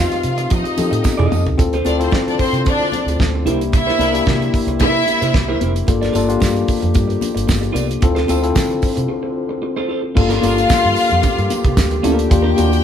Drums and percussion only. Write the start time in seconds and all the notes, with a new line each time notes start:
0.12 closed hi-hat
0.23 closed hi-hat
0.38 closed hi-hat
0.50 kick, closed hi-hat, tambourine, muted conga, low conga
0.65 closed hi-hat
0.78 closed hi-hat, tambourine, muted conga, low conga
0.93 closed hi-hat
1.04 kick, snare, tambourine, high conga
1.19 high tom
1.31 mid tom, tambourine, high conga
1.47 floor tom
1.58 kick, closed hi-hat, muted conga
1.73 closed hi-hat
1.85 closed hi-hat, muted conga
2.01 closed hi-hat
2.12 kick, snare, high conga
2.28 closed hi-hat
2.39 kick, open hi-hat
2.54 closed hi-hat
2.65 kick, closed hi-hat, muted conga
2.92 closed hi-hat, muted conga, low conga
3.08 closed hi-hat
3.19 kick, snare, high conga
3.46 closed hi-hat, high conga
3.61 closed hi-hat
3.72 kick, closed hi-hat, muted conga
3.88 snare
3.99 closed hi-hat, muted conga
4.15 closed hi-hat
4.26 kick, snare, high conga
4.42 closed hi-hat
4.54 kick, open hi-hat
4.68 closed hi-hat
4.80 kick, closed hi-hat, muted conga, low conga
5.07 closed hi-hat, muted conga
5.22 closed hi-hat
5.33 kick, snare, high conga
5.61 closed hi-hat, high conga
5.76 closed hi-hat
5.87 kick, closed hi-hat, muted conga
6.03 snare, closed hi-hat
6.14 closed hi-hat, tambourine, muted conga
6.30 closed hi-hat
6.40 kick, snare, tambourine, high conga
6.56 closed hi-hat
6.68 kick, open hi-hat, tambourine
6.82 closed hi-hat
6.94 kick, closed hi-hat, tambourine, muted conga
7.10 closed hi-hat
7.21 closed hi-hat, tambourine, muted conga, low conga
7.37 closed hi-hat
7.48 kick, snare, tambourine, high conga
7.63 closed hi-hat
7.75 closed hi-hat, tambourine, high conga
7.91 closed hi-hat
8.01 kick, closed hi-hat, muted conga
8.16 snare, closed hi-hat
8.28 closed hi-hat, tambourine, muted conga
8.44 closed hi-hat
8.55 kick, snare, tambourine, high conga
8.70 closed hi-hat
8.82 kick, open hi-hat, tambourine
8.97 closed hi-hat
10.17 kick, crash, muted conga
10.30 snare, closed hi-hat
10.43 closed hi-hat, tambourine, muted conga
10.58 closed hi-hat
10.70 kick, snare, tambourine, high conga
10.84 closed hi-hat
10.96 open hi-hat, tambourine
11.11 closed hi-hat
11.23 kick, closed hi-hat, tambourine, muted conga
11.38 closed hi-hat
11.50 closed hi-hat, tambourine, muted conga, low conga
11.65 kick, closed hi-hat
11.77 kick, snare, tambourine, high conga
11.91 closed hi-hat
12.04 closed hi-hat, tambourine, high conga
12.19 closed hi-hat
12.31 kick, closed hi-hat
12.58 closed hi-hat, tambourine, muted conga
12.73 closed hi-hat